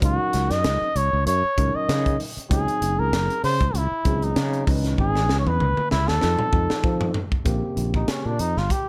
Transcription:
0.00 fretless electric bass C#2, tine electric piano F#3 C#4 D#4 A#4, kick, closed hi-hat
0.05 muted trumpet F#4
0.33 fretless electric bass C#2, snare, closed hi-hat
0.50 fretless electric bass F#2, muted trumpet D#5, snare, closed hi-hat
0.64 fretless electric bass C#2, snare, closed hi-hat
0.82 muted fretless electric bass stroke
0.95 fretless electric bass C#2, muted trumpet C#5, closed hi-hat
1.13 fretless electric bass C#2
1.27 fretless electric bass F#2, muted trumpet C#5, closed hi-hat
1.44 muted fretless electric bass stroke
1.58 fretless electric bass C#2, tine electric piano F#3 C#4 D#4 A#4, kick, closed hi-hat
1.75 muted trumpet D#5, muted fretless electric bass stroke
1.89 fretless electric bass C#3, snare, closed hi-hat
2.06 kick, closed hi-hat
2.20 open hi-hat
2.37 muted fretless electric bass stroke, closed hi-hat
2.50 fretless electric bass C#2, tine electric piano F#3 C4 D#4 G#4, muted trumpet G#4, kick, closed hi-hat
2.68 closed hi-hat
2.82 fretless electric bass F#1, closed hi-hat
2.99 fretless electric bass C#2, muted trumpet A#4
3.13 fretless electric bass F#1, snare, closed hi-hat
3.30 closed hi-hat
3.44 fretless electric bass C#3, muted trumpet C5, snare, open hi-hat
3.61 fretless electric bass C#2, kick, closed hi-hat
3.74 fretless electric bass C#2, muted trumpet E4, closed hi-hat
4.04 fretless electric bass C#2, tine electric piano F#3 C4 D#4 G#4, kick, closed hi-hat
4.22 muted trumpet D#4, closed hi-hat
4.36 fretless electric bass C#3, snare, closed hi-hat
4.53 closed hi-hat
4.67 fretless electric bass C#2, tine electric piano E3 C#4 D#4 B4, kick, open hi-hat
4.84 snare, closed hi-hat
4.98 fretless electric bass G#1, muted trumpet G#4, kick
5.16 snare
5.29 fretless electric bass C#2, snare
5.39 muted trumpet C#5
5.46 fretless electric bass E2, muted trumpet B4, high tom
5.60 fretless electric bass C#2, mid tom
5.77 mid tom
5.91 fretless electric bass C#2, muted trumpet E4, snare
6.08 fretless electric bass D#2, muted trumpet A4, snare
6.20 fretless electric bass F2, tine electric piano F3 C4 D#4 A4, snare
6.39 muted fretless electric bass stroke, mid tom
6.52 fretless electric bass F2, tine electric piano F3 C4 D#4 A4, kick
6.70 muted fretless electric bass stroke, snare
6.84 fretless electric bass F3, kick
7.01 floor tom
7.14 floor tom
7.32 muted fretless electric bass stroke, kick
7.45 fretless electric bass A#1, tine electric piano C#3 A#3 C4 G4, kick, closed hi-hat
7.77 fretless electric bass A#1, closed hi-hat
7.94 muted trumpet D#4, kick
8.08 muted trumpet C#4, muted fretless electric bass stroke, snare, closed hi-hat
8.25 fretless electric bass A#2, muted trumpet D4
8.39 fretless electric bass F2, muted trumpet D#4, closed hi-hat
8.57 fretless electric bass G1, muted trumpet F4, snare
8.70 muted trumpet G4, muted fretless electric bass stroke, kick, closed hi-hat

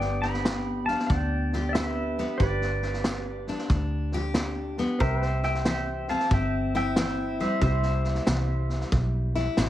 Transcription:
Already playing: fingered electric bass G1, steel-string acoustic guitar G2 B3 D4 G4, upright piano D4 G4 D5, pedal steel guitar D5 G5
0.01 snare
0.22 pedal steel guitar G5 B5, snare
0.34 snare
0.45 steel-string acoustic guitar D3, snare, hi-hat pedal
0.86 steel-string acoustic guitar D4, pedal steel guitar F5 A5, snare
0.99 snare
1.07 fingered electric bass D2, steel-string acoustic guitar G2, pedal steel guitar D5 G5, kick, snare
1.53 steel-string acoustic guitar G4, snare
1.69 pedal steel guitar D5 E5
1.75 steel-string acoustic guitar D3, pedal steel guitar B4, snare, hi-hat pedal
2.18 steel-string acoustic guitar B3, snare
2.38 fingered electric bass G1, steel-string acoustic guitar G2, upright piano D4 G4, pedal steel guitar B4 D5, kick, snare
2.42 upright piano B4
2.61 snare
2.82 snare
2.93 snare
3.04 steel-string acoustic guitar D3, snare, hi-hat pedal
3.47 steel-string acoustic guitar D4, snare
3.58 snare
3.70 fingered electric bass D2, steel-string acoustic guitar G2, kick, snare
4.12 steel-string acoustic guitar G4, snare
4.34 steel-string acoustic guitar D3, snare, hi-hat pedal
4.77 steel-string acoustic guitar B3, snare
4.99 fingered electric bass C2, steel-string acoustic guitar C3, upright piano C4 G4, pedal steel guitar A#4 C5 E5 G5, kick, snare
5.03 upright piano C5
5.22 pedal steel guitar C5, snare
5.43 pedal steel guitar E5 G5, snare
5.54 snare
5.65 steel-string acoustic guitar E3, pedal steel guitar E5 G5, snare, hi-hat pedal
6.08 steel-string acoustic guitar C4, pedal steel guitar F5 A5, snare
6.19 snare
6.31 fingered electric bass G1, steel-string acoustic guitar G2, pedal steel guitar E5 G5, kick, snare
6.74 steel-string acoustic guitar E4, pedal steel guitar E5 G5, snare
6.96 steel-string acoustic guitar E3, pedal steel guitar E5 G5, snare, hi-hat pedal
7.39 steel-string acoustic guitar G3, pedal steel guitar C5 E5, snare
7.59 fingered electric bass C2, steel-string acoustic guitar C3, upright piano E4 G4 C5, kick, snare
7.63 pedal steel guitar C5 E5
7.83 snare
8.04 snare
8.15 snare
8.27 fingered electric bass C2, steel-string acoustic guitar E3, snare, hi-hat pedal
8.69 snare
8.81 snare
8.92 fingered electric bass B1, steel-string acoustic guitar G2, kick, snare
9.35 steel-string acoustic guitar E4, snare
9.57 fingered electric bass A1, steel-string acoustic guitar B2, snare, hi-hat pedal

